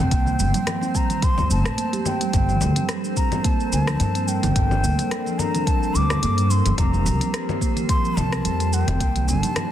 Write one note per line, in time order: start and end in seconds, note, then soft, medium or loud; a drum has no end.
0.00 0.10 G3 medium
0.00 9.72 C4 medium
0.00 9.72 C5 medium
0.00 0.97 G5 loud
0.11 0.41 C2 medium
0.11 0.26 A#3 loud
0.11 kick loud
0.11 closed hi-hat medium
0.11 shaker soft
0.26 low conga medium
0.26 shaker soft
0.39 0.51 G1 loud
0.39 0.54 G3 medium
0.39 high conga medium
0.39 shaker medium
0.54 0.62 F3 medium
0.54 closed hi-hat soft
0.54 high conga medium
0.54 shaker soft
0.67 cross-stick medium
0.67 closed hi-hat medium
0.67 low conga medium
0.67 shaker soft
0.81 0.89 C4 medium
0.81 muted conga medium
0.81 shaker soft
0.95 1.09 G3 medium
0.95 1.25 A#5 loud
0.95 kick medium
0.95 shaker medium
1.10 1.49 G3 medium
1.10 closed hi-hat soft
1.10 low conga medium
1.10 shaker soft
1.22 1.51 C6 loud
1.22 kick loud
1.22 closed hi-hat medium
1.22 shaker soft
1.38 1.52 D#2 medium
1.38 low conga medium
1.38 shaker soft
1.50 1.62 G1 medium
1.50 1.64 A3 medium
1.50 2.08 A5 loud
1.50 high conga medium
1.50 shaker medium
1.65 cross-stick medium
1.65 closed hi-hat soft
1.65 shaker soft
1.78 1.92 A#3 medium
1.78 closed hi-hat medium
1.78 shaker soft
1.93 2.04 G4 medium
1.93 closed hi-hat soft
1.93 high conga medium
1.93 shaker soft
2.06 2.90 G5 medium
2.06 muted conga soft
2.06 low conga medium
2.06 shaker medium
2.21 2.32 G3 loud
2.21 closed hi-hat soft
2.21 high conga medium
2.21 shaker soft
2.33 2.63 G1 loud
2.33 6.74 G3 medium
2.33 6.74 D4 medium
2.33 6.74 A4 medium
2.33 6.74 A#4 medium
2.33 kick loud
2.33 closed hi-hat medium
2.33 shaker soft
2.48 2.56 F3 medium
2.48 low conga medium
2.48 shaker soft
2.61 2.73 D2 loud
2.61 high conga medium
2.61 low conga medium
2.61 shaker medium
2.76 2.84 C4 medium
2.76 closed hi-hat soft
2.76 high conga medium
2.76 shaker soft
2.89 3.03 G3 medium
2.89 cross-stick medium
2.89 closed hi-hat medium
2.89 shaker soft
3.04 3.43 G3 medium
3.04 shaker soft
3.17 3.46 A#5 medium
3.17 kick medium
3.17 shaker medium
3.32 closed hi-hat soft
3.32 low conga medium
3.32 shaker soft
3.44 3.59 A#3 loud
3.44 3.72 A5 medium
3.44 kick loud
3.44 closed hi-hat medium
3.44 shaker soft
3.60 shaker soft
3.72 3.94 D2 medium
3.72 3.87 G3 medium
3.72 4.29 A5 loud
3.72 muted conga soft
3.72 shaker medium
3.87 3.95 F3 medium
3.87 cross-stick medium
3.87 closed hi-hat soft
3.87 high conga medium
3.87 shaker soft
4.00 4.37 G2 medium
4.00 closed hi-hat medium
4.00 low conga medium
4.00 shaker soft
4.15 4.23 C4 medium
4.15 closed hi-hat soft
4.15 shaker soft
4.27 4.42 G3 medium
4.27 5.40 G5 loud
4.27 shaker medium
4.43 4.53 G1 loud
4.43 4.82 G3 medium
4.43 closed hi-hat soft
4.43 muted conga soft
4.43 low conga loud
4.43 shaker soft
4.56 4.85 G1 loud
4.56 kick loud
4.56 closed hi-hat medium
4.56 shaker soft
4.71 low conga medium
4.71 shaker soft
4.83 4.95 D2 loud
4.83 4.98 A#3 loud
4.83 high conga medium
4.83 shaker medium
4.99 closed hi-hat soft
4.99 high conga medium
4.99 shaker soft
5.11 5.26 G3 medium
5.11 cross-stick medium
5.11 closed hi-hat medium
5.11 shaker soft
5.26 5.34 F3 medium
5.26 muted conga medium
5.26 shaker soft
5.39 5.68 A#5 loud
5.39 low conga medium
5.39 shaker medium
5.54 5.61 C4 medium
5.54 closed hi-hat soft
5.54 low conga medium
5.54 shaker soft
5.66 5.81 G3 medium
5.66 5.96 A5 loud
5.66 kick loud
5.66 closed hi-hat medium
5.66 shaker soft
5.82 6.21 G3 medium
5.82 shaker soft
5.95 6.16 D2 medium
5.95 6.52 D6 loud
5.95 high conga medium
5.95 shaker medium
6.10 cross-stick medium
6.10 closed hi-hat soft
6.10 low conga medium
6.10 shaker soft
6.22 6.60 G2 medium
6.22 6.37 A#3 loud
6.22 closed hi-hat medium
6.22 shaker soft
6.37 closed hi-hat soft
6.37 high conga medium
6.37 shaker soft
6.50 6.65 G3 medium
6.50 6.77 C6 loud
6.50 muted conga medium
6.50 shaker medium
6.65 6.75 G1 loud
6.65 6.73 F3 medium
6.65 closed hi-hat soft
6.65 high conga medium
6.65 shaker soft
6.77 7.08 F1 medium
6.77 8.98 F3 medium
6.77 8.98 C4 medium
6.77 8.98 G4 medium
6.77 8.98 A#4 loud
6.77 7.57 A#5 loud
6.77 kick loud
6.77 closed hi-hat medium
6.77 low conga medium
6.77 shaker soft
6.93 7.00 C4 medium
6.93 low conga medium
6.93 shaker soft
7.06 7.17 C2 loud
7.06 7.20 G3 medium
7.06 high conga medium
7.06 shaker medium
7.20 7.60 G3 medium
7.20 closed hi-hat soft
7.20 high conga medium
7.20 shaker soft
7.34 cross-stick medium
7.34 closed hi-hat medium
7.34 shaker soft
7.49 low conga medium
7.49 shaker soft
7.61 7.76 A#3 loud
7.61 kick medium
7.61 shaker medium
7.76 closed hi-hat soft
7.76 low conga medium
7.76 shaker soft
7.89 8.04 G3 medium
7.89 8.20 C6 loud
7.89 kick loud
7.89 closed hi-hat medium
7.89 shaker soft
8.04 8.12 F3 medium
8.04 shaker soft
8.17 8.39 C2 medium
8.17 8.75 A5 loud
8.17 muted conga medium
8.17 low conga medium
8.17 shaker medium
8.32 8.39 C4 medium
8.32 cross-stick medium
8.32 closed hi-hat soft
8.32 high conga medium
8.32 shaker soft
8.45 8.82 F2 medium
8.45 8.59 G3 medium
8.45 closed hi-hat medium
8.45 shaker soft
8.60 8.99 G3 medium
8.60 closed hi-hat soft
8.60 shaker soft
8.73 9.30 G5 loud
8.73 shaker medium
8.87 8.97 F1 loud
8.87 closed hi-hat soft
8.87 muted conga medium
8.87 low conga medium
8.87 shaker soft
9.00 9.30 C2 loud
9.00 9.72 C3 medium
9.00 9.72 G3 medium
9.00 9.15 A#3 loud
9.00 9.72 D4 medium
9.00 9.72 D#4 medium
9.00 kick loud
9.00 closed hi-hat medium
9.00 shaker soft
9.16 closed hi-hat soft
9.16 low conga medium
9.16 shaker soft
9.28 9.40 G1 loud
9.28 9.42 G3 medium
9.28 9.39 G#5 loud
9.28 high conga medium
9.28 shaker medium
9.39 9.50 F3 medium
9.39 9.72 A5 loud
9.43 closed hi-hat soft
9.43 high conga medium
9.43 shaker soft
9.56 cross-stick medium
9.56 closed hi-hat medium
9.56 low conga medium
9.56 shaker soft